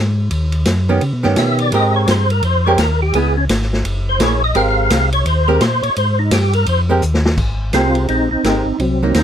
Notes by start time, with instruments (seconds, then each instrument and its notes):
Already playing: tonewheel organ G#2
0.31 tonewheel organ D#2, ride
0.52 ride
0.65 tonewheel organ F#2, snare, hi-hat pedal, ride
0.89 hollow-body jazz guitar D#3 B3 C#4 G4
1.01 tonewheel organ C#3, ride
1.13 tonewheel organ B2
1.23 tonewheel organ G2, hollow-body jazz guitar D#3 B3 C#4 G4, snare
1.36 tonewheel organ B2 E5, snare, hi-hat pedal, ride
1.58 tonewheel organ D5, ride
1.72 tonewheel organ G#2 D#5, hollow-body jazz guitar G#3 C4 G4 A#4, ride
1.96 tonewheel organ C#5
2.08 tonewheel organ G2 C5, snare, hi-hat pedal, ride
2.30 tonewheel organ A#4, ride
2.43 tonewheel organ F2 C5, ride
2.66 hollow-body jazz guitar G#3 C4 G4 A#4, tonewheel organ C#5
2.78 tonewheel organ D#2 A#4, snare, hi-hat pedal, ride
3.02 tonewheel organ G4
3.13 tonewheel organ C#2 G#4, hollow-body jazz guitar G#3 B3 E4, ride
3.37 tonewheel organ C#4
3.49 tonewheel organ G#1, snare, hi-hat pedal, ride
3.62 snare
3.73 snare
3.84 tonewheel organ F#1, ride
4.09 tonewheel organ C5
4.19 tonewheel organ A#1 C#5, hollow-body jazz guitar F#3 A#3 E4 G#4, snare, hi-hat pedal, ride
4.44 tonewheel organ D#5
4.55 tonewheel organ G#1 F5, hollow-body jazz guitar G#3 C4 G4 A#4, ride
4.90 tonewheel organ C2, snare, hi-hat pedal, ride
5.12 tonewheel organ C#5, ride
5.26 tonewheel organ D#2 C5, ride
5.48 hollow-body jazz guitar G#3 C4 G4 A#4, tonewheel organ A#4
5.61 tonewheel organ A#2 C5, snare, hi-hat pedal, ride
5.83 tonewheel organ A#2 C#5, ride
5.96 tonewheel organ G#2 C5, ride
6.19 tonewheel organ D#4
6.31 tonewheel organ G2 G4, snare, hi-hat pedal, ride
6.53 tonewheel organ A#4, ride
6.66 tonewheel organ F2 C5, ride
6.89 hollow-body jazz guitar G#3 C4 G4 A#4
7.02 tonewheel organ D#2, hi-hat pedal
7.14 snare
7.26 snare
7.38 tonewheel organ G#1, kick, crash
7.73 tonewheel organ C2 C4 F4, hollow-body jazz guitar G#3 C4 G4 A#4, snare, hi-hat pedal, ride
7.95 ride
8.08 tonewheel organ A#1 C4 D#4, ride
8.31 tonewheel organ A#1 C4 D#4
8.43 tonewheel organ G#1, hollow-body jazz guitar G#3 C4 G4 A#4, snare, hi-hat pedal, ride
8.66 tonewheel organ G#1
8.79 tonewheel organ C2 F#3 C4, ride
9.03 hollow-body jazz guitar F#3 A#3 D#4
9.14 tonewheel organ D#2 C4 D#4, snare, hi-hat pedal, ride